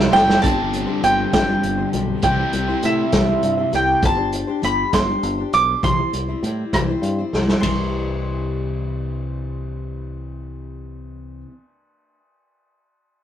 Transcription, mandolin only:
Already playing: E5
0.13 G5
0.42 A5
1.04 G5
1.33 G5
2.24 G5
2.85 E5
3.75 G5
4.05 A5
4.64 B5
4.94 C6
5.54 D6
5.84 C6
7.61 C6

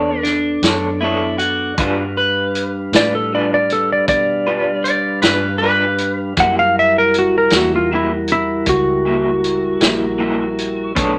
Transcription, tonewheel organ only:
Already playing: B3 D4 A4 D5
1.77 G3 D4 B4 F5
6.37 G3 E4 F#4 A#4
10.96 A3 B3 D4 B4

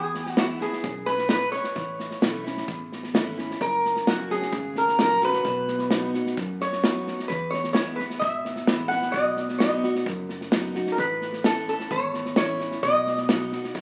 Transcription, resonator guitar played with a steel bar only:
Already playing: G#4
0.39 F#4
0.62 G#4
1.06 B4
1.30 B4
1.52 C#5
3.62 A#4
4.08 F#4
4.31 G#4
4.78 A#4
5.01 A#4
5.25 B4
6.61 C#5
7.28 B4
7.50 C#5
7.73 C#5
7.96 B4
8.19 E5
8.88 F#5
9.12 D#5
9.58 D#5
10.92 A#4
10.99 B4
11.46 A4
11.69 A4
11.92 C#5
12.37 C#5
12.83 D#5
13.73 C#5

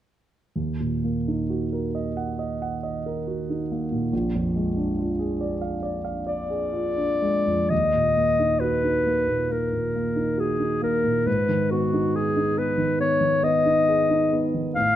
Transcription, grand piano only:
0.56 D#2
0.80 A#2
1.04 A#3
1.28 D#4
1.50 F#4
1.73 A#4
1.95 D#5
2.17 F#5
2.39 D#5
2.62 F#5
2.83 D#5
3.06 A#4
3.27 F#4
3.50 D#4
3.72 A#3
3.92 A#2
4.13 A#1
4.35 F2
4.56 G#3
4.77 D4
4.98 F4
5.19 G#4
5.41 D5
5.61 F5
5.83 D5
6.04 F5
6.27 D5
6.50 G#4
6.73 F4
6.97 D4
7.22 G#3
7.47 F2
7.70 D#2
7.94 A#2
8.16 A#3
8.39 D#4
8.61 F#4
8.84 D#4
9.06 A#3
9.28 A#2
9.49 A#3
9.73 A#2
9.95 A#3
10.16 D#4
10.38 F#4
10.60 D#4
10.82 A#3
11.04 A#2
11.26 G#2
11.49 D#3
11.71 B3
11.93 D#4
12.15 G#4
12.37 D#4
12.57 B3
12.78 D#3
12.99 B3
13.21 D#3
13.43 B3
13.66 D#4
13.88 G#4
14.10 D#4
14.32 B3
14.54 D#3
14.76 A2

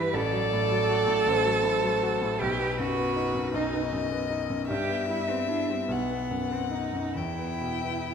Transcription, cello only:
Already playing: B4
0.15 A4
2.41 G4
2.78 F#4
3.54 D#4
4.70 G4
5.10 E4
5.30 C4
5.49 D4
5.70 C4
5.89 B3
6.52 C4
6.72 D#4
7.15 E4

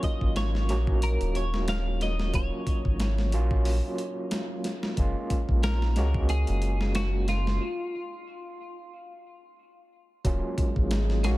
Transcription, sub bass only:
0.22 G#1
0.70 A#1
1.21 D#1
2.34 D#1
2.85 G#1
3.33 A#1
4.98 F#1
5.49 A#1
5.97 C#2
6.49 F#1
10.25 D#1
10.76 G#1
11.24 A#1

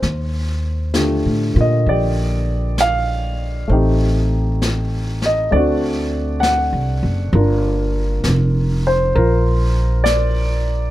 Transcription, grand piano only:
Already playing: C5
0.94 D3 A3 F4 G4
1.54 A#3 F4
1.61 D#5
1.89 G4 D5
2.81 F5
3.68 A3 C4 D#4
3.73 G4
5.26 D#5
5.51 A3 C4 D4 D5
5.56 F#4
6.40 F#5
7.34 A#3 D4 F4 A#4
8.87 C5
9.15 F4 A#4
10.04 D5

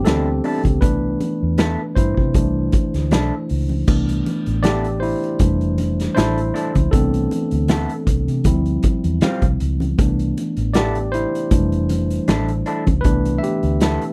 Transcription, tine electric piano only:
Already playing: E3 G3 A3 B3 C4 D4 G4
0.05 C4 A4
0.81 E3 A3 B3 D4 B4
1.95 E4 C5
2.35 E3 A3 D4
3.87 E3 A3 B3 D4
4.63 G4 D5
5.00 E4 C5
5.39 E3 G3 A3 D4
6.15 E4 C5
6.91 E3 A3 B3 C4 D4 A4
8.45 F3 G3 C4 E4
9.98 E3 A3 B3 D4
10.74 G4 D5
11.12 E4 C5
11.51 E3 G3 A3 D4
13.01 E3 A3 B3 B4
13.05 D4
13.38 E5
13.43 G4

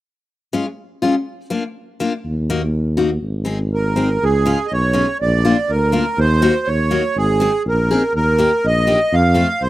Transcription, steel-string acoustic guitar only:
0.53 G#3 C#4 F4
1.02 G#3 C#4 F4
1.50 A#3 D4 F4
2.00 A#3 D4 F4
2.50 A#3 D#4 F#4
2.97 A#3 D#4 F#4
3.45 C4 D#4 G#4
3.96 C4 D#4 G#4
4.46 G#3 C#4 F4
4.93 G#3 C#4 F4
5.45 A#3 D4 F4
5.92 A#3 D4 F4
6.42 A#3 D#4 F#4
6.91 A#3 D#4 F#4
7.40 C4 D#4 G#4
7.91 C4 D#4 G#4
8.38 A#3 D#4 G4
8.87 A#3 D#4 G4
9.34 A3 C4 F4

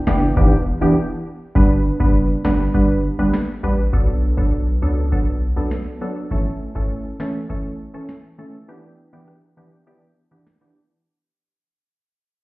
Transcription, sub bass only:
0.07 F#1
0.37 E1
0.81 E1
1.55 G1
2.00 F#1
2.45 G1
2.74 G1
3.19 G1
3.63 A1
3.93 B1
4.38 B1
4.82 C#2
5.12 B1
5.56 B1

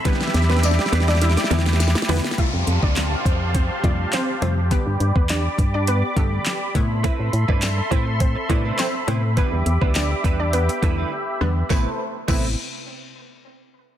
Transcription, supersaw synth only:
Already playing: E5 B5
0.05 G4 D6
2.38 G4 F5 A5 C6
4.71 D5 B5 D6
6.75 A4 E5 C6
9.37 G4 D6
11.70 A3 A4 B4 C5

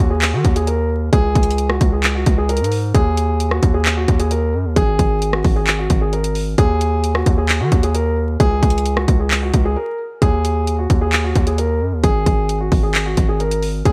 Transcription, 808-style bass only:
0.00 D#2
0.33 D#3
0.45 D#2
1.13 C#2
1.35 C#2
1.81 C#2
2.26 C#2
2.60 G#2
2.95 D#2
3.63 D#2
4.08 D#2
4.54 F#2
4.65 D#2
4.76 G#1
4.99 G#1
5.45 G#1
5.90 G#1
6.58 D#2
7.26 D#2
7.60 D#3
7.72 D#2
8.40 C#2
8.63 C#2
9.08 C#2
9.54 C#2
10.22 D#2
10.90 D#2
11.35 D#2
11.81 F#2
11.92 D#2
12.04 G#1
12.26 G#1
12.72 G#1
13.17 G#1
13.85 D#2

